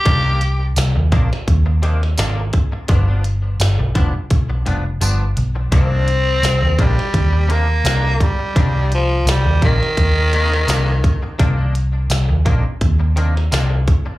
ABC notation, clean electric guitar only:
X:1
M:4/4
L:1/16
Q:"Swing 16ths" 1/4=85
K:Cm
V:1 name="Clean electric guitar"
[C,E,B,D] [E,B,D] z4 [C,E,B,D] z3 [C,E,B,D] z [C,E,B,D] z3 | [G,,F,=B,D] [F,B,D] z4 [G,,F,B,D] z3 [G,,F,B,D] z [G,,F,B,D] z3 | [C,E,B,D] [E,B,D] z4 [C,E,B,D] z3 [C,E,B,D] z [C,E,B,D] z3 | [C,E,B,D] [E,B,D] z4 [C,E,B,D] z3 [C,E,B,D] z [C,E,B,D] z3 |
[C,E,B,D] [E,B,D] z4 [C,E,B,D] z3 [C,E,B,D] z [C,E,B,D] z3 |]